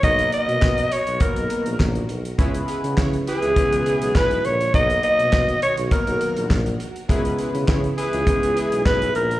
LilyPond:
<<
  \new Staff \with { instrumentName = "Alto saxophone" } { \time 4/4 \key cis \dorian \tempo 4 = 102 dis''8 dis''4 cis''8 ais'4 r4 | r4. gis'4. b'8 cis''8 | dis''8 dis''4 cis''8 ais'4 r4 | r4. gis'4. b'8 ais'8 | }
  \new Staff \with { instrumentName = "Analog polysynth" } { \time 4/4 \key cis \dorian r1 | <cis' e' gis'>16 r16 <e' gis' b'>16 r16 <e' gis' cis''>16 r16 <e' gis' b'>8 r8 <e' gis' b'>16 r16 <e' gis' b'>8 r8 | r1 | <cis' e' gis'>16 r16 <e' gis' b'>16 r16 <e' gis' cis''>16 r16 <e' gis' b'>8 r8 <e' gis' b'>16 r16 <e' gis' b'>8 r8 | }
  \new Staff \with { instrumentName = "Analog polysynth" } { \time 4/4 \key cis \dorian <fis ais b dis' ais'>4. r8 <fis ais b dis' ais'>4. r8 | <gis b cis' e' b'>4. r8 <gis b cis' e' b'>4. r8 | <fis ais b dis' ais'>4. r8 <fis ais b dis' ais'>4. r8 | <gis b cis' e' ais' b'>4. r8 <gis b cis' e' b'>4. r8 | }
  \new Staff \with { instrumentName = "String machine" } { \clef bass \time 4/4 \key cis \dorian << { <dis fis fis' ais'>1 | <cis e gis e'>1 | <dis fis fis' ais'>1 | <cis e gis e'>1 | } \\ { b,1~ | b,1~ | b,1~ | b,1 | } >> }
  \new Staff \with { instrumentName = "Tuba" } { \clef bass \time 4/4 \key cis \dorian b,,8 r16 b,16 b,8 r16 b,,16 r16 b,,16 r16 ais,,16 ais,,8 b,,8 | cis,8 r16 cis16 cis8 r16 cis,16 r16 cis,16 r16 b,,16 b,,8 ais,,8 | b,,8 r16 b,16 b,8 r16 b,,16 r16 b,,16 r16 ais,,16 ais,,8 r8 | cis,8 r16 cis16 cis8 r16 cis,16 r16 cis,16 r16 b,,16 b,,8 ais,,8 | }
  \new DrumStaff \with { instrumentName = "Drums" } \drummode { \time 4/4 <hh bd>16 hh16 hh16 hh16 <hc bd sn>16 hh16 hh16 hh16 <hh bd>16 hh16 hh16 hh16 <hc bd sn>16 hh16 hh16 hh16 | <hh bd>16 hh16 hh16 hh16 <hc bd sn>16 hh16 hh16 hh16 <hh bd>16 hh16 hh16 hh16 <hc bd sn>16 hh16 hh16 hh16 | <hh bd>16 hh16 hh16 hh16 <hc bd sn>16 hh16 hh16 hh16 <hh bd>16 hh16 hh16 hh16 <hc bd sn>16 hh16 hh16 hh16 | <hh bd>16 hh16 hh16 hh16 <hc bd sn>16 hh16 hh16 hh16 <hh bd>16 hh16 hh16 hh16 <hc bd sn>16 hh16 hh16 hh16 | }
>>